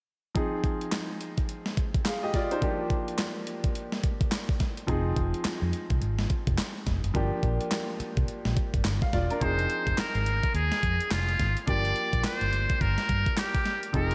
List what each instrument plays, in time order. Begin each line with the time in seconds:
0.35 grand piano F3 C4 D#4 G#4, kick, closed hi-hat
0.64 kick, closed hi-hat
0.81 closed hi-hat
0.92 snare, clap, closed hi-hat
1.21 closed hi-hat
1.38 kick, closed hi-hat
1.49 closed hi-hat
1.66 snare
1.77 kick, closed hi-hat
1.94 kick, closed hi-hat
2.05 grand piano G#4 F5, snare, clap, closed hi-hat
2.23 grand piano G4 D#5
2.34 grand piano F4 D5, kick, snare, closed hi-hat
2.51 grand piano D#4 C5, closed hi-hat
2.61 grand piano F3 A#3 D4 G4, kick, closed hi-hat
2.90 kick, closed hi-hat
3.08 closed hi-hat
3.18 snare, clap, closed hi-hat
3.47 closed hi-hat
3.64 kick, closed hi-hat
3.75 closed hi-hat
3.92 snare
4.03 kick, closed hi-hat
4.21 kick, closed hi-hat
4.32 snare, clap, closed hi-hat
4.49 kick
4.60 kick, snare, closed hi-hat
4.77 closed hi-hat
4.87 fingered electric bass F1, grand piano F3 C4 D#4 G#4, kick, closed hi-hat
5.16 fingered electric bass F1, kick, closed hi-hat
5.34 closed hi-hat
5.45 muted fingered electric bass stroke, snare, clap, closed hi-hat
5.62 fingered electric bass F2
5.73 closed hi-hat
5.90 fingered electric bass C2, kick, closed hi-hat
6.01 fingered electric bass G#1, closed hi-hat
6.19 snare
6.30 kick, closed hi-hat
6.47 fingered electric bass F1, kick, closed hi-hat
6.58 snare, clap, closed hi-hat
6.87 fingered electric bass F1, kick, snare, closed hi-hat
7.04 fingered electric bass F#1, closed hi-hat
7.14 fingered electric bass G1, grand piano F3 A#3 D4 G4, kick, closed hi-hat
7.43 fingered electric bass A#1, kick, closed hi-hat
7.61 closed hi-hat
7.71 snare, clap, closed hi-hat
8.00 muted fingered electric bass stroke, closed hi-hat
8.17 fingered electric bass C2, kick, closed hi-hat
8.28 muted fingered electric bass stroke, closed hi-hat
8.45 fingered electric bass A#1, snare
8.57 kick, closed hi-hat
8.74 fingered electric bass G1, kick, closed hi-hat
8.85 fingered electric bass G1, snare, clap, closed hi-hat
9.02 grand piano F5, kick
9.13 fingered electric bass E1, grand piano F4 D5, kick, snare, closed hi-hat
9.30 grand piano D4 A#4, closed hi-hat
9.41 fingered electric bass F1, grand piano F3 C4 D#4 G#4, muted trumpet C5, kick, closed hi-hat
9.59 closed hi-hat
9.70 closed hi-hat
9.87 fingered electric bass F1, kick, closed hi-hat
9.98 muted trumpet A#4, muted fingered electric bass stroke, snare, clap, closed hi-hat
10.15 fingered electric bass G#1, closed hi-hat
10.26 closed hi-hat
10.43 kick, closed hi-hat
10.54 fingered electric bass D#2, muted trumpet G#4, closed hi-hat
10.72 snare, closed hi-hat
10.83 fingered electric bass F2, kick, closed hi-hat
11.00 closed hi-hat
11.11 fingered electric bass F1, muted trumpet F4, snare, clap, closed hi-hat
11.29 closed hi-hat
11.39 fingered electric bass G#1, kick, snare, closed hi-hat
11.57 closed hi-hat
11.67 fingered electric bass G1, grand piano F3 A#3 D4 G4, muted trumpet D5, kick, closed hi-hat
11.85 closed hi-hat
11.96 closed hi-hat
12.13 fingered electric bass A#1, kick, closed hi-hat
12.24 muted trumpet C5, muted fingered electric bass stroke, snare, clap, closed hi-hat
12.41 fingered electric bass G1, closed hi-hat
12.53 closed hi-hat
12.70 kick, closed hi-hat
12.81 fingered electric bass G1, muted trumpet A#4, kick, closed hi-hat
12.98 snare, closed hi-hat
13.09 fingered electric bass G2, kick, closed hi-hat
13.26 kick, closed hi-hat
13.37 muted trumpet G4, snare, clap, closed hi-hat
13.55 kick, closed hi-hat
13.65 snare, closed hi-hat
13.83 closed hi-hat
13.93 fingered electric bass F1, grand piano F3 C4 D#4 G#4, muted trumpet A#4, kick, closed hi-hat
14.11 closed hi-hat